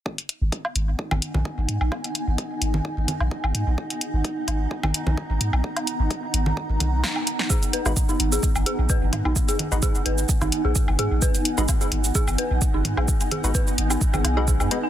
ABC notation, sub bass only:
X:1
M:4/4
L:1/16
Q:"Swing 16ths" 1/4=129
K:G#m
V:1 name="Sub bass" clef=bass
z3 G,,, z2 G,,,2 z G,,, z A,,, z G,,, G,, A,,, | z3 G,,, z2 G,,,2 z G,,, z A,,, z G,,, G,, A,,, | z3 G,,, z2 G,,,2 z G,,, z A,,, z G,,, G,, A,,, | z3 G,,, z2 G,,,2 z G,,, B,,,2 z4 |
z3 G,,, z2 G,,,2 z G,,, z A,,, z G,,, G,, A,,, | z3 G,,, z2 G,,,2 z G,,, z A,,, z G,,, G,, A,,, | z3 G,,, z2 G,,,2 z G,,, z A,,, z G,,, G,, A,,, | z3 G,,, z2 G,,,2 z G,,, B,,,3 G,, z2 |]